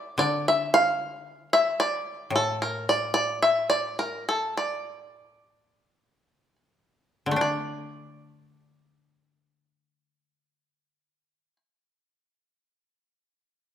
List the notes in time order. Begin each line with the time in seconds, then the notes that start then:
Already playing: D5
0.18 D3 D5
0.48 E5
0.74 F5
1.53 E5
1.80 D5
2.30 A2
2.36 A4
2.62 A#4
2.89 D5
3.14 D5
3.42 E5
3.70 D5
3.99 A#4
4.29 A4
4.57 D5
7.26 D3
7.31 A3
7.36 D4
7.41 D5